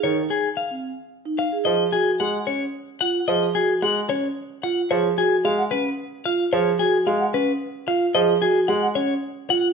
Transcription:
X:1
M:3/4
L:1/16
Q:1/4=111
K:Db
V:1 name="Flute"
z12 | [K:Blyd] z12 | z12 | z4 z f z6 |
z4 z f z6 | z4 z f z6 |]
V:2 name="Clean electric guitar"
d z A z f z4 z f z | [K:Blyd] d z G z f z c z3 f z | d z G z f z c z3 f z | c z G z e z B z3 e z |
c z G z e z B z3 e z | d z G z f z c z3 f z |]
V:3 name="Vibraphone"
z4 z C z3 E z A | [K:Blyd] G z F z3 C z3 E z | G z F z3 C z3 E z | G z F z3 C z3 E z |
G z F z3 C z3 E z | G z F z3 C z3 E z |]
V:4 name="Grand piano" clef=bass
E, z8 z3 | [K:Blyd] E, z3 G, z6 z | E, z3 G, z6 z | E, z3 G, z6 z |
E, z3 G, z6 z | E, z3 G, z6 z |]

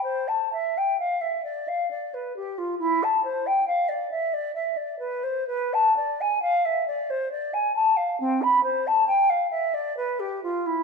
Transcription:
X:1
M:3/4
L:1/16
Q:1/4=67
K:C
V:1 name="Flute"
c a e g f e d f d B G F | E a c g f d e d e d B c | B a d ^g f e d c d g a f | C b c a g f e d B G F E |]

